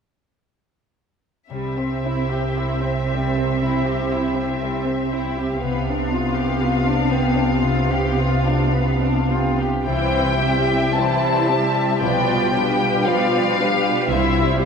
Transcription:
1.49 double bass section C2, harp C3, cello section C3, violin section G3 E5, viola section C4
1.78 violin section C4
2.04 harp E4, violin section E4
2.31 violin section G4
2.56 violin section E4, harp C5
2.84 violin section C4
3.09 violin section G3, harp G4
3.36 violin section C4
3.62 harp G3, violin section E4
3.88 violin section G4
4.13 harp E4, violin section E4
4.36 violin section C4
4.63 violin section G3, harp C5
4.87 violin section C4
5.13 violin section E4, harp G4
5.38 violin section G4
5.61 double bass section C2, harp C3, cello section C3, viola section B3, violin section B3 F5
5.87 violin section D4
6.12 harp F4, violin section F4
6.36 violin section G4
6.61 violin section F4, harp B4
6.87 violin section D4
7.11 violin section B3, harp G4
7.36 violin section D4
7.62 harp C3, violin section F4
7.89 violin section G4
8.17 harp F4, violin section F4
8.45 violin section D4
8.73 violin section B3, harp B4
9.02 violin section D4
9.31 violin section F4, harp G4
9.60 violin section G4
9.85 double bass section C2, cello section C3, harp C3, viola section E3 E4, french horn section G3 E4, violin section E4 C5 G5
10.40 viola section G3 C4, harp E4, violin section G4 E5
10.93 cello section C3, viola section E3 E4, violin section E4 C5 A5, harp G4
11.48 viola section G3 C4, violin section G4 E5, harp C5
11.99 double bass section B1, harp B2, cello section B2, viola section F3 F4, french horn section F4, violin section B4 D5 G5
12.52 viola section G3 D4, harp F4, violin section G4 B4
13.05 cello section B2, viola section F3 F4, harp G4, violin section B4 D5 F5
13.59 viola section G3 D4, violin section G4 B4, harp D5
14.09 double bass section C2, cello section C3, harp C3, french horn section G3 E4, viola section G3 E4, violin section E4 C5 E5
14.60 viola section C4 G4, violin section C5

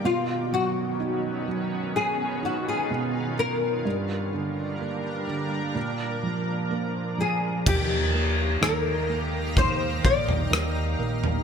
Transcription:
0.04 felt piano B2, ambient pad D#3 F#3 B3 C#4, nylon-string guitar F4
0.52 felt piano F#3, nylon-string guitar F#4
1.00 felt piano D#4
1.48 felt piano F#3
1.94 ambient pad F4, nylon-string guitar G#4
2.43 felt piano D#4, nylon-string guitar F#4
2.68 nylon-string guitar G#4
2.91 felt piano B2
3.39 nylon-string guitar A#4
3.85 felt piano G2, ambient pad G3 A#3 D4 A#4
4.33 felt piano D3
4.80 felt piano A#3
5.28 felt piano D3
5.75 felt piano A#2, ambient pad F3
6.23 felt piano F3
6.71 felt piano A#3
7.18 felt piano F3, nylon-string guitar G#4
7.66 analog synth bass D#2, felt piano D#3, ambient pad D#4 G4 F5 A#5, nylon-string guitar G4, kick, floor tom, crash
8.14 felt piano A#3
8.61 analog synth bass D#2, felt piano D#3, nylon-string guitar A#4, cross-stick
9.09 felt piano A#3
9.56 felt piano D#3, nylon-string guitar C5, kick, floor tom
10.04 analog synth bass A#1, felt piano A#3, nylon-string guitar D5, kick
10.29 floor tom
10.51 analog synth bass D#2, felt piano D#3, cross-stick
10.99 analog synth bass A#1, felt piano A#3
11.24 floor tom

